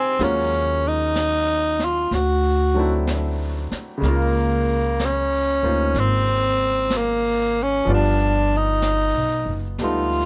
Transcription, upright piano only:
Already playing: F3 G#3 C4 D#4 F4 G4 G#4 C5 D#5 F5 G5 G#5
0.19 F#3 G#3 A#3 C#4 F4
2.74 F#3 A3 C4 D4
2.79 E4
3.98 C#3 G#3
4.04 A#3
4.08 F4
5.62 A#3 D#4 F4 C5
7.85 F3 G3 B3 D5
7.90 F4
9.79 G3 A3 B3 D#4

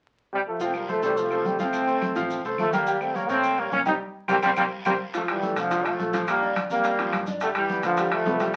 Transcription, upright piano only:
0.61 F3 F4 F5
0.89 A3 A4 C5
1.03 A3 A4 C5
1.31 A3 A4 C5
1.59 F3 F4 F5
1.87 A3 A4 C5
2.16 F3 F4 F5
2.45 A3 A4 C5
2.73 G3 G4 G5
2.87 G3 G4 G5
3.15 A#3 A#4 C#5
3.29 A#3 A#4 C#5
3.58 A#3 A#4 C#5
3.86 G3 G4 G5
4.28 G4 A#4 C5
4.43 G4 A#4 C5
4.57 G4 A#4 C5
4.86 G4 A#4 C5
5.14 F3 F4
5.42 A3 A4
5.71 F3 F4
5.99 A3 A4
6.13 F3 F4
6.42 D4 D5
6.71 A#3 A#4
6.85 D4 D5
6.99 F3 F4
7.27 D4 D5
7.42 G3 G4
7.69 B3 B4
7.98 G3 G4
8.26 B3 B4
8.41 G3 G4

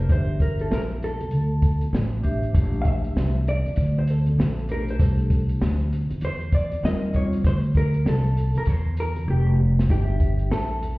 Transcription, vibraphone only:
0.09 D4 G4 C5 E5
2.23 D4 G4 C5 E5
2.54 A3 D4 G4 C5
4.69 A3 D4 G4 C5
4.99 A3 D4 G4 C5
6.83 G3 C4 F4 A#4
7.14 G3 C4 F4 C5
9.89 D4 G4 C5 D#5
9.97 E5

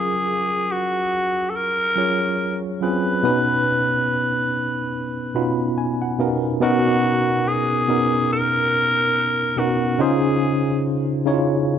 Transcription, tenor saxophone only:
Already playing: G#4
0.72 F#4
1.50 A4
1.56 A#4
2.83 B4
6.63 F#4
7.48 G#4
8.33 A#4
9.59 F#4
10.01 G#4

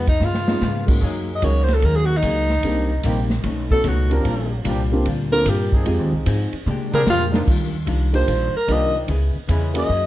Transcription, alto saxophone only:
0.09 D#4
0.25 F4
1.35 D#5
1.45 C#5
1.63 C5
1.74 A4
1.85 A#4
1.96 G#4
2.05 F#4
2.17 D#4
3.71 A4
3.88 F#4
5.32 A#4
5.49 G4
6.94 A#4
7.10 F4
8.15 C5
8.56 A#4
8.72 D#5
9.78 D#5

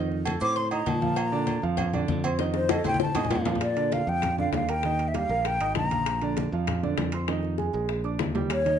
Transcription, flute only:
0.42 D6
0.57 C6
0.72 A#5
0.89 A5
1.18 A#5
2.56 C5
2.72 D#5
2.87 G5
3.02 A5
3.63 D5
3.93 F5
4.09 G5
4.40 F5
4.54 F5
4.70 G5
5.08 E5
5.16 F5
5.47 G5
5.77 A#5
8.53 C#5

